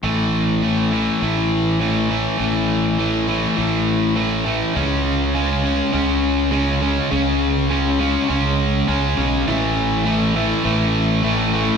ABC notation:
X:1
M:4/4
L:1/8
Q:1/4=102
K:A
V:1 name="Overdriven electric guitar" clef=bass
[A,,E,A,]2 [A,,E,A,] [A,,E,A,] [A,,E,A,]2 [A,,E,A,] [A,,E,A,] | [A,,E,A,]2 [A,,E,A,] [A,,E,A,] [A,,E,A,]2 [A,,E,A,] [A,,E,A,] | [C,G,C]2 [C,G,C] [C,G,C] [C,G,C]2 [C,G,C] [C,G,C] | [C,G,C]2 [C,G,C] [C,G,C] [C,G,C]2 [C,G,C] [C,G,C] |
[A,,E,A,]2 [A,,E,A,] [A,,E,A,] [A,,E,A,]2 [A,,E,A,] [A,,E,A,] |]
V:2 name="Fingered electric bass" clef=bass
A,,,4 A,,,4 | A,,,4 A,,,4 | C,,4 C,,4 | C,,4 C,,2 C,, B,,, |
A,,,4 A,,,4 |]